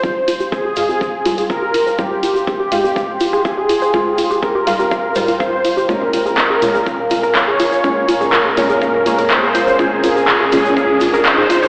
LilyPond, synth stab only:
\new Staff \with { instrumentName = "Synth stab" } { \clef bass \time 4/4 \key f \minor \tempo 4 = 123 <aes, g f'>4. <aes, aes f'>4 <aes, g f'>4. | <aes, g f'>4. <aes, aes f'>2~ <aes, aes f'>8 | <aes, aes f'>4. <aes, g f'>4 <aes, g f'>4. | <bes, aes des'>4. <bes, aes des'>2~ <bes, aes des'>8 |
<bes, aes des'>4. <bes, aes des'>4 <bes, aes des'>4. | <bes, aes des'>4. <bes, aes des'>2~ <bes, aes des'>8 | }